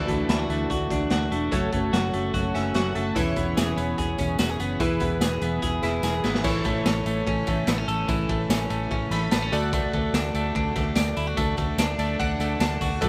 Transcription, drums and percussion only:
0.08 kick, closed hi-hat
0.29 snare, closed hi-hat
0.50 closed hi-hat
0.70 kick, closed hi-hat
0.90 kick, snare, closed hi-hat
1.10 snare, closed hi-hat
1.32 closed hi-hat
1.52 kick, closed hi-hat
1.73 kick, closed hi-hat
1.93 snare, closed hi-hat
2.14 closed hi-hat
2.34 kick, closed hi-hat
2.55 snare, closed hi-hat
2.74 snare, closed hi-hat
2.96 closed hi-hat
3.16 kick, closed hi-hat, tambourine
3.36 kick, closed hi-hat, tambourine
3.57 snare, closed hi-hat, tambourine
3.78 closed hi-hat, tambourine
3.98 kick, closed hi-hat, tambourine
4.18 kick, closed hi-hat, tambourine
4.39 snare, closed hi-hat, tambourine
4.60 closed hi-hat, tambourine
4.80 kick, closed hi-hat, tambourine
5.00 kick, closed hi-hat, tambourine
5.21 snare, closed hi-hat, tambourine
5.41 closed hi-hat, tambourine
5.62 kick, closed hi-hat, tambourine
5.83 snare, closed hi-hat, tambourine
6.03 snare, tambourine
6.24 snare, tambourine
6.35 snare
6.44 kick, crash, tambourine
6.64 kick, ride, tambourine
6.86 snare, ride, tambourine
7.06 ride, tambourine
7.27 kick, ride
7.47 kick, ride, tambourine
7.67 snare, ride, tambourine
7.88 ride, tambourine
8.08 kick, ride, tambourine
8.29 kick, ride
8.50 snare, ride, tambourine
8.70 ride, tambourine
8.91 kick, ride
9.11 snare, ride, tambourine
9.31 snare, ride, tambourine
9.53 ride, tambourine
9.73 kick, ride, tambourine
9.93 kick, ride
10.14 snare, ride, tambourine
10.35 ride, tambourine
10.55 kick, ride
10.75 kick, snare, ride, tambourine
10.95 snare, ride, tambourine
11.17 ride, tambourine
11.37 kick, ride, tambourine
11.57 kick, ride, tambourine
11.78 snare, ride, tambourine
11.99 ride, tambourine
12.20 kick, ride, tambourine
12.40 ride, tambourine
12.60 snare, ride, tambourine
12.81 kick, open hi-hat, ride, tambourine
13.02 kick, hi-hat pedal, ride, tambourine

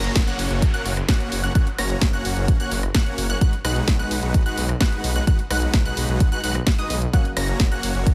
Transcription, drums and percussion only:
0.04 closed hi-hat
0.16 kick, snare, closed hi-hat
0.27 closed hi-hat
0.39 open hi-hat
0.51 closed hi-hat
0.62 kick, closed hi-hat
0.74 closed hi-hat
0.86 open hi-hat
0.97 cross-stick, closed hi-hat
1.09 kick, snare, closed hi-hat
1.20 closed hi-hat
1.32 open hi-hat
1.44 closed hi-hat
1.55 kick, closed hi-hat
1.67 closed hi-hat
1.78 cross-stick, open hi-hat
1.90 closed hi-hat
2.02 kick, snare, closed hi-hat
2.13 closed hi-hat
2.25 open hi-hat
2.37 closed hi-hat
2.48 kick, closed hi-hat
2.60 closed hi-hat
2.71 open hi-hat
2.83 cross-stick, closed hi-hat
2.95 kick, snare, closed hi-hat
3.06 closed hi-hat
3.18 open hi-hat
3.30 closed hi-hat
3.41 kick, closed hi-hat
3.53 closed hi-hat
3.65 cross-stick, open hi-hat
3.76 closed hi-hat
3.88 kick, snare, closed hi-hat
4.00 closed hi-hat
4.11 open hi-hat
4.23 closed hi-hat
4.34 kick, closed hi-hat
4.46 closed hi-hat
4.58 open hi-hat
4.69 cross-stick, closed hi-hat
4.81 kick, snare, closed hi-hat
4.92 closed hi-hat
5.04 open hi-hat
5.16 closed hi-hat
5.27 kick, closed hi-hat
5.39 closed hi-hat
5.51 cross-stick, open hi-hat
5.62 closed hi-hat
5.74 kick, snare, closed hi-hat
5.86 closed hi-hat
5.97 open hi-hat
6.09 closed hi-hat
6.20 kick, closed hi-hat
6.32 closed hi-hat
6.44 open hi-hat
6.55 cross-stick, closed hi-hat
6.67 kick, snare, closed hi-hat
6.78 closed hi-hat
6.90 open hi-hat
7.02 closed hi-hat
7.13 kick, closed hi-hat
7.25 closed hi-hat
7.37 cross-stick, open hi-hat, ride
7.48 closed hi-hat
7.60 kick, snare, closed hi-hat
7.72 closed hi-hat
7.83 open hi-hat, ride
7.95 closed hi-hat
8.06 kick, closed hi-hat

